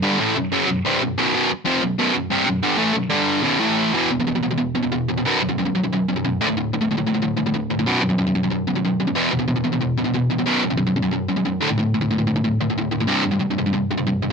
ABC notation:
X:1
M:4/4
L:1/16
Q:1/4=184
K:Bphr
V:1 name="Distorted electric guitar" clef=bass
[G,,D,G,]2 [A,,E,A,]2 [B,,,F,,]2 [F,,^C,F,]2 [B,,,F,,]2 [=C,,G,,=C,]2 [B,,,F,,]2 [B,,,F,,B,,]2 | [B,,,F,,B,,]2 z2 [^E,,C,^E,]2 [B,,,F,,]2 [B,,,F,,B,,]2 [B,,,F,,]2 [C,,G,,C,]2 [B,,,F,,]2 | [G,,D,G,]2 [A,,E,A,]2 [B,,,F,,]2 [G,,D,G,]4 [B,,,F,,B,,]2 [A,,E,A,]4 | [E,,B,,E,]2 [E,,B,,] [E,,B,,] [E,,B,,] [E,,B,,] [E,,B,,] [E,,B,,] [E,,B,,]2 [E,,B,,] [E,,B,,] [E,,B,,]2 [E,,B,,] [E,,B,,] |
[B,,,F,,B,,]2 [B,,,F,,] [B,,,F,,] [B,,,F,,] [B,,,F,,] [B,,,F,,] [B,,,F,,] [B,,,F,,]2 [B,,,F,,] [B,,,F,,] [B,,,F,,]2 [D,,A,,D,] [D,,A,,] | [D,,A,,]2 [D,,A,,] [D,,A,,] [D,,A,,] [D,,A,,] [D,,A,,] [D,,A,,] [D,,A,,]2 [D,,A,,] [D,,A,,] [D,,A,,]2 [D,,A,,] [D,,A,,] | [B,,,F,,B,,]2 [B,,,F,,] [B,,,F,,] [B,,,F,,] [B,,,F,,] [B,,,F,,] [B,,,F,,] [B,,,F,,]2 [B,,,F,,] [B,,,F,,] [B,,,F,,]2 [B,,,F,,] [B,,,F,,] | [E,,B,,E,]2 [E,,B,,] [E,,B,,] [E,,B,,] [E,,B,,] [E,,B,,] [E,,B,,] [E,,B,,]2 [E,,B,,] [E,,B,,] [E,,B,,]2 [E,,B,,] [E,,B,,] |
[B,,,F,,B,,]2 [B,,,F,,] [B,,,F,,] [B,,,F,,] [B,,,F,,] [B,,,F,,] [B,,,F,,] [B,,,F,,]2 [B,,,F,,] [B,,,F,,] [B,,,F,,]2 [D,,A,,D,] [D,,A,,] | [D,,A,,]2 [D,,A,,] [D,,A,,] [D,,A,,] [D,,A,,] [D,,A,,] [D,,A,,] [D,,A,,]2 [D,,A,,] [D,,A,,] [D,,A,,]2 [D,,A,,] [D,,A,,] | [C,,G,,C,]2 [C,,G,,] [C,,G,,] [C,,G,,] [C,,G,,] [C,,G,,] [C,,G,,] [C,,G,,]2 [C,,G,,] [C,,G,,] [C,,G,,]2 [C,,G,,] z |]